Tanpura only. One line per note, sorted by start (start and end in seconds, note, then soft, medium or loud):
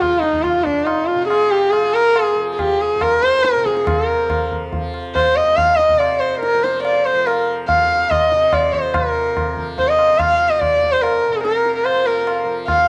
0.00 0.54 F2 soft
0.00 1.15 C3 medium
0.00 1.74 F3 medium
0.55 2.94 F2 medium
1.15 3.55 C3 medium
1.74 2.35 F3 medium
2.35 4.15 F3 medium
2.95 5.33 F2 medium
3.56 5.93 C3 medium
4.15 4.75 F3 soft
4.75 6.54 F3 medium
5.34 7.72 F2 medium
5.93 8.31 C3 medium
6.54 7.13 F3 medium
7.13 9.53 F3 medium
7.73 10.70 F2 medium
8.32 8.95 C3 medium
8.95 11.28 C3 medium
9.53 10.11 F3 medium
10.11 11.87 F3 soft
10.70 12.88 F2 medium
11.28 12.88 C3 medium
11.87 12.44 F3 medium
12.44 12.88 F3 medium